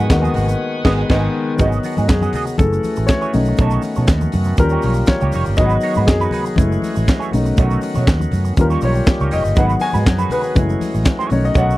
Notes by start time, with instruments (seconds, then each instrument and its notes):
Already playing: grand piano D#3 G#3 B3 F#4, tonewheel organ B4 F#5 G#5 D#6, clean electric guitar F#5
0.09 fingered electric bass D#2, grand piano D#3 G#3 A#3 F#4, muted clean electric guitar stroke, kick, snare, clap, closed hi-hat, shaker
0.17 grand piano B3
0.21 clean electric guitar B3 F#4 G#4 D#5, high conga, shaker
0.34 fingered electric bass G#1, clean electric guitar B3 F#4 G#4 F#5, open hi-hat, muted conga, low conga, shaker
0.48 muted clean electric guitar stroke, closed hi-hat, shaker
0.84 fingered electric bass G#1, grand piano D#3 G#3 B3, clean electric guitar B3 F#4 G#4 D#5, kick, snare, crash
1.09 fingered electric bass G#1, grand piano D#3 G#3 B3 G#4, clean electric guitar B3 F#4 G#4 D#5, kick, snare, crash
1.56 fingered electric bass G#1, tonewheel organ D#3 F#3 B3 F#4, grand piano F#3 B3 F#4, clean electric guitar B3 F#4 G#4, kick, closed hi-hat, muted conga, low conga, shaker
1.61 grand piano D#4, clean electric guitar D#5
1.72 shaker
1.83 clean electric guitar B3 F#4 G#4 F#5, open hi-hat, muted conga, shaker
1.97 fingered electric bass G#2, clean electric guitar B3 F#4 G#4 D#5, high conga, shaker
2.08 fingered electric bass F#2, grand piano G#4, muted clean electric guitar stroke, kick, snare, clap, closed hi-hat, shaker
2.21 clean electric guitar B3 F#4 G#4 D#5, high conga, shaker
2.33 clean electric guitar B3 F#4 G#4 D#5, open hi-hat, muted conga, low conga, shaker
2.47 muted clean electric guitar stroke, shaker
2.58 fingered electric bass F#1, tonewheel organ E3 A3 C#4 F#4, grand piano A3 E4 G#4 A4, muted clean electric guitar stroke, kick, closed hi-hat, high conga, shaker
2.73 muted clean electric guitar stroke, shaker
2.84 open hi-hat, muted conga, high conga, shaker
2.96 fingered electric bass A1, muted clean electric guitar stroke, shaker
3.06 grand piano C#5, muted clean electric guitar stroke, kick, snare, clap, closed hi-hat, high conga, shaker
3.22 clean electric guitar A3 E4 G#4 C#5, shaker
3.33 fingered electric bass B1, tonewheel organ D#3 B3, grand piano A3 C#4 D#4, open hi-hat, high conga, shaker
3.45 muted clean electric guitar stroke, shaker
3.57 fingered electric bass B1, clean electric guitar B3 D#4 A4, kick, closed hi-hat, low conga, shaker
3.61 clean electric guitar C#5
3.70 shaker
3.82 open hi-hat, muted conga, shaker
3.95 fingered electric bass B2, clean electric guitar B3 D#4 A4 C#5, high conga, shaker
4.07 fingered electric bass D#2, kick, snare, clap, closed hi-hat, shaker
4.21 muted clean electric guitar stroke, high conga, shaker
4.32 fingered electric bass F#2, open hi-hat, muted conga, low conga, shaker
4.44 muted clean electric guitar stroke, shaker
4.57 fingered electric bass D#2, tonewheel organ G3 A#3 G4, grand piano G3 C#4 F4 A#4, muted clean electric guitar stroke, kick, closed hi-hat, high conga, shaker
4.70 clean electric guitar A#3 D#4 G4 C#5, shaker
4.82 fingered electric bass B1, clean electric guitar A#3 D#4 G4, open hi-hat, high conga, shaker
4.86 clean electric guitar C#5
4.94 muted clean electric guitar stroke, shaker
5.06 grand piano C#5, muted clean electric guitar stroke, kick, snare, clap, closed hi-hat, muted conga, high conga, shaker
5.21 fingered electric bass C#2, clean electric guitar A#3 D#4 G4 C#5, shaker
5.32 fingered electric bass F1, clean electric guitar A#3 D#4 G4 C#5, open hi-hat, muted conga, high conga, shaker
5.45 fingered electric bass G1, muted clean electric guitar stroke, shaker
5.56 fingered electric bass G#1, tonewheel organ F#3 B3 F#4 G#4, grand piano F#3 B3 D#4 D#5, clean electric guitar G#3 D#4 F#4, kick, closed hi-hat, low conga, shaker
5.61 clean electric guitar B4
5.70 shaker
5.81 clean electric guitar G#3 D#4 F#4 C#5, open hi-hat, shaker
5.95 fingered electric bass G#2, clean electric guitar F#4 B4, high conga, shaker
5.99 clean electric guitar G#3 D#4
6.07 fingered electric bass F#2, grand piano G#4, kick, snare, clap, closed hi-hat, muted conga, shaker
6.20 clean electric guitar G#3 D#4 F#4 B4, high conga, shaker
6.31 clean electric guitar G#3 D#4 F#4 B4, open hi-hat, muted conga, low conga, shaker
6.45 muted clean electric guitar stroke, shaker
6.56 fingered electric bass F#1, tonewheel organ E3 F#3 C#4, grand piano G#3 A3 E4, muted clean electric guitar stroke, kick, closed hi-hat, muted conga, high conga, shaker
6.72 muted clean electric guitar stroke, shaker
6.82 open hi-hat, high conga, shaker
6.95 fingered electric bass A1, muted clean electric guitar stroke, shaker
7.07 muted clean electric guitar stroke, kick, snare, clap, closed hi-hat, high conga, shaker
7.19 clean electric guitar A3 E4 G#4 C#5, shaker
7.31 fingered electric bass B1, tonewheel organ D#3 B3, grand piano A3 C#4 D#4, muted clean electric guitar stroke, open hi-hat, high conga, shaker
7.45 muted clean electric guitar stroke, shaker
7.57 fingered electric bass B1, clean electric guitar A3 D#4 F#4 C#5, kick, closed hi-hat, low conga, shaker
7.70 shaker
7.81 muted clean electric guitar stroke, open hi-hat, muted conga, shaker
7.95 fingered electric bass B2, clean electric guitar A3 D#4 F#4 C#5, high conga, shaker
8.07 fingered electric bass D#2, muted clean electric guitar stroke, kick, snare, clap, closed hi-hat, shaker
8.20 muted clean electric guitar stroke, high conga, shaker
8.31 fingered electric bass F#2, open hi-hat, muted conga, low conga, shaker
8.45 muted clean electric guitar stroke, shaker
8.57 fingered electric bass D#2, tonewheel organ G3 A#3 G4, grand piano G3 C#4 F4, muted clean electric guitar stroke, kick, closed hi-hat, high conga, shaker
8.61 grand piano A#4
8.70 clean electric guitar A#3 D#4 G4 C#5, shaker
8.81 fingered electric bass B1, clean electric guitar A#3 D#4 G4 C#5, grand piano C#5, open hi-hat, high conga, shaker
8.95 muted clean electric guitar stroke, shaker
9.06 muted clean electric guitar stroke, kick, snare, clap, closed hi-hat, muted conga, high conga, shaker
9.20 fingered electric bass C#2, clean electric guitar A#3 D#4 G4 C#5, shaker
9.31 fingered electric bass F1, clean electric guitar A#3 D#4 G4 C#5, grand piano D#5, open hi-hat, low conga, shaker
9.45 fingered electric bass G1, shaker
9.55 fingered electric bass G#1, tonewheel organ F#3 B3 F#4 G#4, grand piano F#3 B3 D#4 F#5, clean electric guitar G#3 D#4 F#4 B4, kick, closed hi-hat, muted conga, low conga, shaker
9.70 shaker
9.80 clean electric guitar G#3 D#4 F#4 C#5, grand piano G#5, open hi-hat, muted conga, shaker
9.93 fingered electric bass G#2, clean electric guitar G#3 D#4 F#4 B4, high conga, shaker
10.06 fingered electric bass F#2, kick, snare, clap, closed hi-hat, shaker
10.18 clean electric guitar G#3 D#4 F#4 B4, high conga, shaker
10.30 clean electric guitar G#3 D#4 F#4 B4, grand piano B4, open hi-hat, muted conga, low conga, shaker
10.43 muted clean electric guitar stroke, shaker
10.55 fingered electric bass F#1, tonewheel organ E3 F#3 C#4, grand piano G#3 A3 E4, muted clean electric guitar stroke, kick, closed hi-hat, muted conga, high conga, shaker
10.69 muted clean electric guitar stroke, shaker
10.81 open hi-hat, muted conga, high conga, shaker
10.95 fingered electric bass A1, muted clean electric guitar stroke, shaker
11.05 muted clean electric guitar stroke, kick, snare, clap, closed hi-hat, muted conga, high conga, shaker
11.19 clean electric guitar A3 E4 G#4 C#5, shaker
11.30 fingered electric bass B1, tonewheel organ D#3 B3, grand piano A3 C#4 D#4 C#5, open hi-hat, high conga, shaker
11.44 grand piano D#5, muted clean electric guitar stroke, shaker
11.54 fingered electric bass B1, clean electric guitar A3 D#4 F#4 C#5, grand piano F#5, kick, closed hi-hat, muted conga, low conga, shaker
11.70 shaker